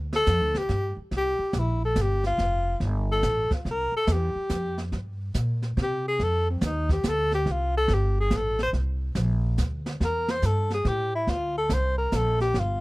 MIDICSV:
0, 0, Header, 1, 5, 480
1, 0, Start_track
1, 0, Tempo, 423131
1, 1266, Time_signature, 3, 2, 24, 8
1, 14527, End_track
2, 0, Start_track
2, 0, Title_t, "Tenor saxophone"
2, 0, Program_c, 0, 66
2, 179, Note_on_c, 0, 69, 127
2, 660, Note_on_c, 0, 67, 101
2, 677, Note_off_c, 0, 69, 0
2, 1121, Note_off_c, 0, 67, 0
2, 1327, Note_on_c, 0, 67, 101
2, 1801, Note_on_c, 0, 64, 76
2, 1818, Note_off_c, 0, 67, 0
2, 2089, Note_off_c, 0, 64, 0
2, 2098, Note_on_c, 0, 69, 86
2, 2292, Note_on_c, 0, 67, 84
2, 2309, Note_off_c, 0, 69, 0
2, 2564, Note_off_c, 0, 67, 0
2, 2570, Note_on_c, 0, 65, 102
2, 3157, Note_off_c, 0, 65, 0
2, 3539, Note_on_c, 0, 69, 105
2, 3968, Note_off_c, 0, 69, 0
2, 4015, Note_on_c, 0, 65, 51
2, 4196, Note_off_c, 0, 65, 0
2, 4206, Note_on_c, 0, 70, 104
2, 4492, Note_off_c, 0, 70, 0
2, 4499, Note_on_c, 0, 69, 102
2, 4680, Note_on_c, 0, 67, 84
2, 4697, Note_off_c, 0, 69, 0
2, 5450, Note_off_c, 0, 67, 0
2, 6606, Note_on_c, 0, 67, 90
2, 6873, Note_off_c, 0, 67, 0
2, 6897, Note_on_c, 0, 68, 107
2, 7069, Note_on_c, 0, 69, 100
2, 7086, Note_off_c, 0, 68, 0
2, 7365, Note_off_c, 0, 69, 0
2, 7377, Note_on_c, 0, 60, 55
2, 7548, Note_on_c, 0, 63, 81
2, 7558, Note_off_c, 0, 60, 0
2, 7844, Note_off_c, 0, 63, 0
2, 7852, Note_on_c, 0, 67, 94
2, 8042, Note_on_c, 0, 69, 114
2, 8059, Note_off_c, 0, 67, 0
2, 8326, Note_off_c, 0, 69, 0
2, 8333, Note_on_c, 0, 67, 92
2, 8517, Note_on_c, 0, 65, 85
2, 8534, Note_off_c, 0, 67, 0
2, 8809, Note_off_c, 0, 65, 0
2, 8816, Note_on_c, 0, 69, 115
2, 9009, Note_on_c, 0, 67, 90
2, 9026, Note_off_c, 0, 69, 0
2, 9295, Note_off_c, 0, 67, 0
2, 9306, Note_on_c, 0, 68, 97
2, 9486, Note_on_c, 0, 69, 96
2, 9503, Note_off_c, 0, 68, 0
2, 9774, Note_off_c, 0, 69, 0
2, 9787, Note_on_c, 0, 72, 99
2, 9873, Note_off_c, 0, 72, 0
2, 11397, Note_on_c, 0, 70, 97
2, 11694, Note_on_c, 0, 72, 110
2, 11711, Note_off_c, 0, 70, 0
2, 11865, Note_on_c, 0, 69, 88
2, 11882, Note_off_c, 0, 72, 0
2, 12163, Note_off_c, 0, 69, 0
2, 12181, Note_on_c, 0, 68, 86
2, 12344, Note_on_c, 0, 67, 91
2, 12361, Note_off_c, 0, 68, 0
2, 12642, Note_off_c, 0, 67, 0
2, 12651, Note_on_c, 0, 64, 87
2, 12825, Note_on_c, 0, 65, 85
2, 12842, Note_off_c, 0, 64, 0
2, 13123, Note_off_c, 0, 65, 0
2, 13134, Note_on_c, 0, 69, 96
2, 13313, Note_on_c, 0, 72, 94
2, 13330, Note_off_c, 0, 69, 0
2, 13584, Note_off_c, 0, 72, 0
2, 13591, Note_on_c, 0, 70, 90
2, 13791, Note_on_c, 0, 69, 97
2, 13808, Note_off_c, 0, 70, 0
2, 14075, Note_off_c, 0, 69, 0
2, 14082, Note_on_c, 0, 67, 104
2, 14282, Note_on_c, 0, 65, 88
2, 14299, Note_off_c, 0, 67, 0
2, 14527, Note_off_c, 0, 65, 0
2, 14527, End_track
3, 0, Start_track
3, 0, Title_t, "Upright bass"
3, 0, Program_c, 1, 32
3, 0, Note_on_c, 1, 38, 76
3, 292, Note_off_c, 1, 38, 0
3, 306, Note_on_c, 1, 41, 95
3, 465, Note_off_c, 1, 41, 0
3, 465, Note_on_c, 1, 38, 54
3, 612, Note_off_c, 1, 38, 0
3, 619, Note_on_c, 1, 36, 69
3, 771, Note_off_c, 1, 36, 0
3, 780, Note_on_c, 1, 43, 93
3, 1076, Note_off_c, 1, 43, 0
3, 1262, Note_on_c, 1, 36, 75
3, 1558, Note_off_c, 1, 36, 0
3, 1738, Note_on_c, 1, 34, 94
3, 2207, Note_off_c, 1, 34, 0
3, 2219, Note_on_c, 1, 31, 96
3, 2688, Note_off_c, 1, 31, 0
3, 2699, Note_on_c, 1, 29, 69
3, 3168, Note_off_c, 1, 29, 0
3, 3179, Note_on_c, 1, 31, 90
3, 3648, Note_off_c, 1, 31, 0
3, 3662, Note_on_c, 1, 33, 96
3, 3958, Note_off_c, 1, 33, 0
3, 4141, Note_on_c, 1, 36, 79
3, 4437, Note_off_c, 1, 36, 0
3, 4620, Note_on_c, 1, 40, 102
3, 4917, Note_off_c, 1, 40, 0
3, 5100, Note_on_c, 1, 41, 89
3, 5570, Note_off_c, 1, 41, 0
3, 5582, Note_on_c, 1, 43, 70
3, 6051, Note_off_c, 1, 43, 0
3, 6061, Note_on_c, 1, 46, 85
3, 6531, Note_off_c, 1, 46, 0
3, 6544, Note_on_c, 1, 48, 97
3, 7012, Note_off_c, 1, 48, 0
3, 7024, Note_on_c, 1, 41, 78
3, 7492, Note_off_c, 1, 41, 0
3, 7502, Note_on_c, 1, 39, 103
3, 7971, Note_off_c, 1, 39, 0
3, 7980, Note_on_c, 1, 38, 90
3, 8450, Note_off_c, 1, 38, 0
3, 8459, Note_on_c, 1, 36, 89
3, 8930, Note_off_c, 1, 36, 0
3, 8939, Note_on_c, 1, 31, 107
3, 9410, Note_off_c, 1, 31, 0
3, 9422, Note_on_c, 1, 33, 95
3, 9891, Note_off_c, 1, 33, 0
3, 9903, Note_on_c, 1, 36, 78
3, 10372, Note_off_c, 1, 36, 0
3, 10381, Note_on_c, 1, 34, 102
3, 10851, Note_off_c, 1, 34, 0
3, 10867, Note_on_c, 1, 38, 83
3, 11334, Note_off_c, 1, 38, 0
3, 11348, Note_on_c, 1, 40, 80
3, 11815, Note_off_c, 1, 40, 0
3, 11826, Note_on_c, 1, 43, 96
3, 12294, Note_off_c, 1, 43, 0
3, 12305, Note_on_c, 1, 45, 94
3, 12773, Note_off_c, 1, 45, 0
3, 12785, Note_on_c, 1, 38, 75
3, 13253, Note_off_c, 1, 38, 0
3, 13265, Note_on_c, 1, 36, 95
3, 13733, Note_off_c, 1, 36, 0
3, 13750, Note_on_c, 1, 34, 90
3, 14215, Note_off_c, 1, 34, 0
3, 14227, Note_on_c, 1, 31, 88
3, 14521, Note_off_c, 1, 31, 0
3, 14527, End_track
4, 0, Start_track
4, 0, Title_t, "Muted upright bass strokes"
4, 1095, Note_on_c, 9, 29, 43
4, 1208, Note_off_c, 9, 29, 0
4, 1575, Note_on_c, 9, 29, 38
4, 1688, Note_off_c, 9, 29, 0
4, 3976, Note_on_c, 9, 29, 36
4, 4090, Note_off_c, 9, 29, 0
4, 4448, Note_on_c, 9, 29, 37
4, 4562, Note_off_c, 9, 29, 0
4, 4940, Note_on_c, 9, 29, 43
4, 5054, Note_off_c, 9, 29, 0
4, 14527, End_track
5, 0, Start_track
5, 0, Title_t, "Drums"
5, 143, Note_on_c, 9, 38, 67
5, 257, Note_off_c, 9, 38, 0
5, 297, Note_on_c, 9, 44, 62
5, 302, Note_on_c, 9, 38, 63
5, 308, Note_on_c, 9, 36, 27
5, 410, Note_off_c, 9, 44, 0
5, 416, Note_off_c, 9, 38, 0
5, 421, Note_off_c, 9, 36, 0
5, 617, Note_on_c, 9, 38, 43
5, 731, Note_off_c, 9, 38, 0
5, 780, Note_on_c, 9, 38, 41
5, 786, Note_on_c, 9, 36, 17
5, 893, Note_off_c, 9, 38, 0
5, 899, Note_off_c, 9, 36, 0
5, 1263, Note_on_c, 9, 25, 50
5, 1263, Note_on_c, 9, 38, 40
5, 1265, Note_on_c, 9, 36, 23
5, 1376, Note_off_c, 9, 38, 0
5, 1379, Note_off_c, 9, 36, 0
5, 1734, Note_on_c, 9, 44, 47
5, 1740, Note_on_c, 9, 38, 61
5, 1743, Note_on_c, 9, 36, 19
5, 1847, Note_off_c, 9, 44, 0
5, 1853, Note_off_c, 9, 38, 0
5, 1857, Note_off_c, 9, 36, 0
5, 2217, Note_on_c, 9, 44, 61
5, 2222, Note_on_c, 9, 38, 59
5, 2224, Note_on_c, 9, 36, 20
5, 2330, Note_off_c, 9, 44, 0
5, 2336, Note_off_c, 9, 38, 0
5, 2337, Note_off_c, 9, 36, 0
5, 2538, Note_on_c, 9, 38, 35
5, 2651, Note_off_c, 9, 38, 0
5, 2703, Note_off_c, 9, 25, 0
5, 2703, Note_on_c, 9, 25, 39
5, 2703, Note_on_c, 9, 38, 43
5, 2704, Note_on_c, 9, 36, 24
5, 2816, Note_off_c, 9, 38, 0
5, 2818, Note_off_c, 9, 36, 0
5, 3183, Note_on_c, 9, 36, 22
5, 3185, Note_on_c, 9, 38, 42
5, 3296, Note_off_c, 9, 36, 0
5, 3298, Note_off_c, 9, 38, 0
5, 3659, Note_on_c, 9, 44, 52
5, 3665, Note_on_c, 9, 36, 18
5, 3665, Note_on_c, 9, 38, 57
5, 3773, Note_off_c, 9, 44, 0
5, 3778, Note_off_c, 9, 36, 0
5, 3778, Note_off_c, 9, 38, 0
5, 3980, Note_on_c, 9, 36, 49
5, 3980, Note_on_c, 9, 38, 40
5, 4094, Note_off_c, 9, 36, 0
5, 4094, Note_off_c, 9, 38, 0
5, 4145, Note_on_c, 9, 36, 24
5, 4147, Note_off_c, 9, 25, 0
5, 4147, Note_on_c, 9, 25, 42
5, 4147, Note_on_c, 9, 38, 40
5, 4258, Note_off_c, 9, 36, 0
5, 4260, Note_off_c, 9, 38, 0
5, 4618, Note_on_c, 9, 44, 58
5, 4623, Note_on_c, 9, 38, 64
5, 4625, Note_on_c, 9, 36, 24
5, 4731, Note_off_c, 9, 44, 0
5, 4737, Note_off_c, 9, 38, 0
5, 4739, Note_off_c, 9, 36, 0
5, 5096, Note_on_c, 9, 44, 51
5, 5102, Note_on_c, 9, 38, 57
5, 5105, Note_on_c, 9, 36, 20
5, 5209, Note_off_c, 9, 44, 0
5, 5215, Note_off_c, 9, 38, 0
5, 5219, Note_off_c, 9, 36, 0
5, 5418, Note_on_c, 9, 38, 39
5, 5532, Note_off_c, 9, 38, 0
5, 5582, Note_off_c, 9, 25, 0
5, 5582, Note_on_c, 9, 25, 42
5, 5582, Note_on_c, 9, 38, 40
5, 5586, Note_on_c, 9, 36, 17
5, 5696, Note_off_c, 9, 38, 0
5, 5699, Note_off_c, 9, 36, 0
5, 6059, Note_on_c, 9, 44, 58
5, 6065, Note_on_c, 9, 38, 60
5, 6067, Note_on_c, 9, 36, 21
5, 6173, Note_off_c, 9, 44, 0
5, 6178, Note_off_c, 9, 38, 0
5, 6180, Note_off_c, 9, 36, 0
5, 6380, Note_on_c, 9, 38, 41
5, 6494, Note_off_c, 9, 38, 0
5, 6547, Note_on_c, 9, 36, 22
5, 6549, Note_on_c, 9, 38, 44
5, 6661, Note_off_c, 9, 36, 0
5, 6662, Note_off_c, 9, 38, 0
5, 7027, Note_on_c, 9, 36, 25
5, 7028, Note_off_c, 9, 25, 0
5, 7028, Note_on_c, 9, 25, 47
5, 7028, Note_on_c, 9, 38, 39
5, 7140, Note_off_c, 9, 36, 0
5, 7141, Note_off_c, 9, 38, 0
5, 7500, Note_on_c, 9, 44, 55
5, 7506, Note_on_c, 9, 36, 21
5, 7506, Note_on_c, 9, 38, 67
5, 7613, Note_off_c, 9, 44, 0
5, 7619, Note_off_c, 9, 36, 0
5, 7619, Note_off_c, 9, 38, 0
5, 7820, Note_on_c, 9, 36, 54
5, 7821, Note_on_c, 9, 38, 39
5, 7934, Note_off_c, 9, 36, 0
5, 7934, Note_off_c, 9, 38, 0
5, 7979, Note_on_c, 9, 44, 58
5, 7985, Note_on_c, 9, 36, 22
5, 7985, Note_on_c, 9, 38, 64
5, 8092, Note_off_c, 9, 44, 0
5, 8098, Note_off_c, 9, 36, 0
5, 8098, Note_off_c, 9, 38, 0
5, 8299, Note_on_c, 9, 38, 42
5, 8412, Note_off_c, 9, 38, 0
5, 8465, Note_on_c, 9, 36, 19
5, 8466, Note_off_c, 9, 25, 0
5, 8466, Note_on_c, 9, 25, 42
5, 8466, Note_on_c, 9, 38, 45
5, 8578, Note_off_c, 9, 36, 0
5, 8579, Note_off_c, 9, 38, 0
5, 8941, Note_on_c, 9, 38, 43
5, 8943, Note_on_c, 9, 36, 26
5, 9055, Note_off_c, 9, 38, 0
5, 9057, Note_off_c, 9, 36, 0
5, 9419, Note_on_c, 9, 44, 49
5, 9425, Note_on_c, 9, 38, 63
5, 9426, Note_on_c, 9, 36, 18
5, 9532, Note_off_c, 9, 44, 0
5, 9538, Note_off_c, 9, 38, 0
5, 9539, Note_off_c, 9, 36, 0
5, 9741, Note_on_c, 9, 38, 42
5, 9855, Note_off_c, 9, 38, 0
5, 9907, Note_on_c, 9, 36, 22
5, 9908, Note_off_c, 9, 25, 0
5, 9908, Note_on_c, 9, 25, 50
5, 9908, Note_on_c, 9, 38, 40
5, 10020, Note_off_c, 9, 36, 0
5, 10021, Note_off_c, 9, 38, 0
5, 10380, Note_on_c, 9, 44, 48
5, 10386, Note_on_c, 9, 38, 63
5, 10387, Note_on_c, 9, 36, 21
5, 10494, Note_off_c, 9, 44, 0
5, 10500, Note_off_c, 9, 36, 0
5, 10500, Note_off_c, 9, 38, 0
5, 10863, Note_on_c, 9, 44, 57
5, 10868, Note_on_c, 9, 38, 60
5, 10869, Note_on_c, 9, 36, 22
5, 10976, Note_off_c, 9, 44, 0
5, 10982, Note_off_c, 9, 36, 0
5, 10982, Note_off_c, 9, 38, 0
5, 11185, Note_on_c, 9, 38, 52
5, 11299, Note_off_c, 9, 38, 0
5, 11351, Note_on_c, 9, 36, 23
5, 11352, Note_off_c, 9, 25, 0
5, 11352, Note_on_c, 9, 25, 42
5, 11352, Note_on_c, 9, 38, 42
5, 11464, Note_off_c, 9, 36, 0
5, 11465, Note_off_c, 9, 38, 0
5, 11665, Note_on_c, 9, 38, 61
5, 11779, Note_off_c, 9, 38, 0
5, 11821, Note_on_c, 9, 44, 55
5, 11827, Note_on_c, 9, 38, 58
5, 11830, Note_on_c, 9, 36, 17
5, 11935, Note_off_c, 9, 44, 0
5, 11940, Note_off_c, 9, 38, 0
5, 11944, Note_off_c, 9, 36, 0
5, 12141, Note_on_c, 9, 38, 42
5, 12255, Note_off_c, 9, 38, 0
5, 12308, Note_on_c, 9, 38, 45
5, 12310, Note_on_c, 9, 36, 24
5, 12421, Note_off_c, 9, 38, 0
5, 12424, Note_off_c, 9, 36, 0
5, 12788, Note_off_c, 9, 25, 0
5, 12788, Note_on_c, 9, 25, 42
5, 12788, Note_on_c, 9, 38, 43
5, 12791, Note_on_c, 9, 36, 19
5, 12902, Note_off_c, 9, 38, 0
5, 12904, Note_off_c, 9, 36, 0
5, 13267, Note_on_c, 9, 44, 59
5, 13272, Note_on_c, 9, 36, 26
5, 13273, Note_on_c, 9, 38, 68
5, 13380, Note_off_c, 9, 44, 0
5, 13385, Note_off_c, 9, 36, 0
5, 13386, Note_off_c, 9, 38, 0
5, 13747, Note_on_c, 9, 44, 62
5, 13751, Note_on_c, 9, 36, 23
5, 13753, Note_on_c, 9, 38, 70
5, 13860, Note_off_c, 9, 44, 0
5, 13865, Note_off_c, 9, 36, 0
5, 13866, Note_off_c, 9, 38, 0
5, 14067, Note_on_c, 9, 38, 36
5, 14181, Note_off_c, 9, 38, 0
5, 14229, Note_off_c, 9, 25, 0
5, 14229, Note_on_c, 9, 25, 45
5, 14229, Note_on_c, 9, 38, 45
5, 14230, Note_on_c, 9, 36, 19
5, 14342, Note_off_c, 9, 38, 0
5, 14343, Note_off_c, 9, 36, 0
5, 14527, Note_off_c, 9, 25, 0
5, 14527, End_track
0, 0, End_of_file